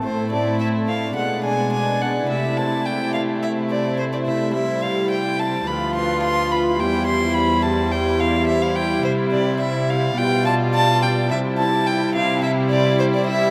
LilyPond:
<<
  \new Staff \with { instrumentName = "Violin" } { \time 4/4 \key c \major \tempo 4 = 106 c''8 d''8 e''8 f''8 fis''8 gis''8 gis''8 fis''8 | e''8 a''8 g''8 f''8 e''8 d''8 c''16 d''16 e''8 | e''8 f''8 g''8 a''8 b''8 c'''8 c'''8 b''8 | g''8 c'''8 b''8 a''8 g''8 f''8 e''16 f''16 g''8 |
c''8 d''8 e''8 f''8 g''8 a''8 a''8 g''8 | e''8 a''8 g''8 f''8 e''8 d''8 c''16 d''16 e''8 | }
  \new Staff \with { instrumentName = "Violin section" } { \time 4/4 \key c \major c''2 d''2~ | d''2 c''2~ | c''2 b'2 | c''1~ |
c''2 d''2 | c''1 | }
  \new Staff \with { instrumentName = "Lute" } { \time 4/4 \key c \major r8 <a c' a'>4 <a c' a'>8 r8 <gis d' d''>4 <gis d' d''>8 | r8 <a e' c''>4 <a e' c''>8 r8 <a e' c''>4 <a e' c''>8 | r8 <e' c''>4 <e' c''>8 r8 <f' b'>4 <f' b'>8 | r8 <e' c''>4 <e' c''>8 r8 <e' c''>4 <e' c''>8 |
r8 <e' c''>4 <e' c''>8 r8 <f' d''>4 <f' d''>8 | r8 <e' c''>4 <e' c''>8 r8 <e' c''>4 <e' c''>8 | }
  \new Staff \with { instrumentName = "Lute" } { \clef bass \time 4/4 \key c \major a,2 b,2 | c1~ | c2 d,2 | e,1 |
c2 b,2 | c1 | }
  \new Staff \with { instrumentName = "Violin section" } { \time 4/4 \key c \major e'2 d'2 | e'1~ | e'2 f'2 | e'1~ |
e'2 f'2 | e'1 | }
  \new Staff \with { instrumentName = "Viola section" } { \clef bass \time 4/4 \key c \major a2 gis2 | a1 | g2 f2 | g1~ |
g1 | g1 | }
  \new Staff \with { instrumentName = "Cello section" } { \clef bass \time 4/4 \key c \major a,2 b,2 | c1~ | c2 d,2 | e,1 |
c2 b,2 | c1 | }
>>